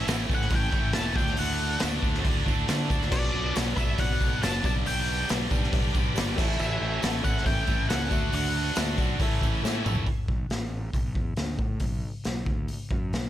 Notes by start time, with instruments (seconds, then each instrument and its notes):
Already playing: tonewheel organ C#4 E4 A4 C#5
0.07 fingered electric bass A1, distorted electric guitar A2, overdriven electric guitar E3 A3 C#4 E4, snare, open hi-hat, tambourine
0.28 fingered electric bass A1, overdriven electric guitar A2 E3 A3 C#4 E4, kick, tambourine
0.34 lead electric guitar F#5
0.41 snare
0.50 fingered electric bass A1, overdriven electric guitar E3 A3 C#4 E4, kick, open hi-hat, tambourine
0.55 lead electric guitar G5
0.72 fingered electric bass A1, overdriven electric guitar A2 E3 A3 C#4 E4, kick, tambourine
0.85 tambourine
0.93 overdriven electric guitar E3 A3 C#4, lead electric guitar A5, snare, open hi-hat, tambourine
0.97 fingered electric bass E1, overdriven electric guitar E4
1.16 fingered electric bass D2, overdriven electric guitar D3 F#3 A3 D4, tonewheel organ E4 F#4 A4 D5, lead electric guitar G5, kick, tambourine
1.27 snare, tambourine
1.37 fingered electric bass D2, overdriven electric guitar D3 F#3, lead electric guitar F#5, open hi-hat, tambourine
1.41 overdriven electric guitar A3 D4
1.51 tambourine
1.61 overdriven electric guitar F#3 A3 D4
1.72 tambourine
1.80 fingered electric bass D2, overdriven electric guitar D3 F#3 A3 D4, snare, open hi-hat, tambourine
1.93 tambourine
2.01 fingered electric bass D2, overdriven electric guitar D3 F#3 A3 D4, kick, tambourine
2.14 snare, tambourine
2.23 fingered electric bass D2, overdriven electric guitar D3 F#3 A3 D4, kick, open hi-hat, tambourine
2.36 tambourine
2.43 fingered electric bass D2, overdriven electric guitar D3 F#3 A3 D4, kick
2.48 distorted electric guitar D3, tambourine
2.59 tambourine
2.67 overdriven electric guitar D3 F#3 A3 D4, fingered electric bass D3, snare, open hi-hat, tambourine
2.89 fingered electric bass D2, overdriven electric guitar F#3 A3 D4, kick, tambourine
3.02 snare, tambourine
3.09 fingered electric bass B1, overdriven electric guitar B2 F#3 B3 D4, tonewheel organ D4 F#4 B4 D5, upright piano F#4 B4 D5, lead electric guitar D5, kick, crash, tambourine
3.24 tambourine
3.32 fingered electric bass B1, overdriven electric guitar F#3 B3 D4
3.54 fingered electric bass B1, overdriven electric guitar B2 F#3 B3 D4, upright piano F#4 B4 D5, snare, open hi-hat, tambourine
3.75 fingered electric bass B1, overdriven electric guitar B2 F#3 B3 D4, upright piano F#4 B4 D5, lead electric guitar E5, kick, tambourine
3.97 fingered electric bass B1, overdriven electric guitar B2 F#3 B3 D4, upright piano F#4 B4 D5, lead electric guitar F#5, kick, open hi-hat, tambourine
4.19 fingered electric bass B1, overdriven electric guitar B2 F#3 B3 D4, kick, tambourine
4.33 tambourine
4.42 fingered electric bass F#1, overdriven electric guitar B2 F#3 B3 D4, upright piano F#4 B4 C#5, lead electric guitar A5, snare, open hi-hat, tambourine
4.63 fingered electric bass B1, distorted electric guitar G2 D3, overdriven electric guitar G3 B3 D4, tonewheel organ D4 G4 B4 D5, upright piano G4 B4 D5, lead electric guitar A5, kick, tambourine
4.67 overdriven electric guitar B2
4.76 tambourine
4.86 fingered electric bass B1, overdriven electric guitar B2 G3 B3 D4, lead electric guitar G5, open hi-hat, tambourine
5.08 overdriven electric guitar G3 B3 D4
5.28 fingered electric bass B1, distorted electric guitar G2 D3, overdriven electric guitar B2 G3 B3 D4, upright piano G4 B4 D5, snare, open hi-hat, tambourine
5.50 fingered electric bass B1, overdriven electric guitar B2 G3 B3 D4, upright piano G4 B4 D5, kick, tambourine
5.64 snare
5.72 fingered electric bass B1, overdriven electric guitar B2 G3 B3, upright piano G4 B4 D5, kick, open hi-hat, tambourine
5.76 overdriven electric guitar D4
5.94 fingered electric bass B1, distorted electric guitar G2 D3, overdriven electric guitar B2 G3 B3 D4, kick, tambourine
6.06 tambourine
6.15 fingered electric bass G1, overdriven electric guitar B2 G3 B3 D4, upright piano G4 B4 D5, snare, open hi-hat, tambourine
6.28 tambourine
6.36 fingered electric bass A1, overdriven electric guitar A2 E3 A3 C#4 E4, tonewheel organ E4 C#5 E5, upright piano A4 C#5 E5, kick, tambourine, crash
6.40 tonewheel organ A4
6.50 snare, tambourine
6.58 fingered electric bass A1, overdriven electric guitar A2 E3 A3 C#4 E4, lead electric guitar E5, tambourine
6.71 tambourine
6.78 fingered electric bass A1, overdriven electric guitar A3 C#4 E4
7.01 fingered electric bass A1, distorted electric guitar A2, overdriven electric guitar E3 A3 C#4 E4, upright piano A4 C#5 E5, snare, open hi-hat, tambourine
7.23 fingered electric bass A1, overdriven electric guitar A2 E3 A3 C#4 E4, upright piano A4 C#5 E5, lead electric guitar F#5, kick, tambourine
7.37 snare
7.44 fingered electric bass A1, overdriven electric guitar E3 A3 C#4 E4, upright piano A4 C#5 E5, lead electric guitar G5, kick, open hi-hat, tambourine
7.66 fingered electric bass A1, overdriven electric guitar A2 E3 A3 C#4 E4, kick, tambourine
7.79 tambourine
7.88 fingered electric bass C#2, overdriven electric guitar E3 A3 C#4 E4, upright piano A4 C#5 E5, lead electric guitar F#5, snare, open hi-hat, tambourine
8.09 fingered electric bass D2, overdriven electric guitar D3 A3 D4 F#4, upright piano F#4 D5 E5, tonewheel organ A4 E5, kick, tambourine
8.22 tambourine
8.31 fingered electric bass D2, overdriven electric guitar D3 A3 D4 F#4, open hi-hat, tambourine
8.35 lead electric guitar F#5
8.43 tambourine
8.54 overdriven electric guitar A3 D4 F#4
8.65 tambourine
8.75 fingered electric bass D2, overdriven electric guitar D3 A3 D4 F#4, upright piano F#4 D5 E5, snare, open hi-hat, tambourine
8.88 tambourine
8.97 fingered electric bass B1, overdriven electric guitar D3 A3 D4 F#4, upright piano F#4 D5 F#5, kick, tambourine
9.09 tambourine
9.19 fingered electric bass A1, overdriven electric guitar A2 E3 A3 C#4 E4, tonewheel organ E4 A4 C#5 E5, upright piano A4 C#5 E5, kick, open hi-hat, tambourine
9.32 tambourine
9.40 fingered electric bass A1, overdriven electric guitar A2 E3 A3 C#4 E4, kick, tambourine
9.55 tambourine
9.60 overdriven electric guitar E3 A3 C#4 E4, upright piano A4 C#5 E5
9.64 fingered electric bass A2, snare, tambourine
9.81 distorted electric guitar E3, overdriven electric guitar A3 C#4 E4
9.85 fingered electric bass A#1, distorted electric guitar A2, mid tom, tambourine
9.95 floor tom
10.07 kick, open hi-hat
10.28 fingered electric bass B1, kick
10.50 fingered electric bass A1, snare, open hi-hat
10.93 fingered electric bass B1, kick, open hi-hat
11.15 fingered electric bass E2, kick
11.36 fingered electric bass D2, snare, open hi-hat
11.59 fingered electric bass A2, kick
11.80 fingered electric bass B1, kick, open hi-hat
12.24 fingered electric bass B1, snare, open hi-hat
12.46 fingered electric bass D2, kick
12.68 muted fingered electric bass stroke, open hi-hat
12.91 fingered electric bass F#2, kick
13.13 fingered electric bass B1, snare, open hi-hat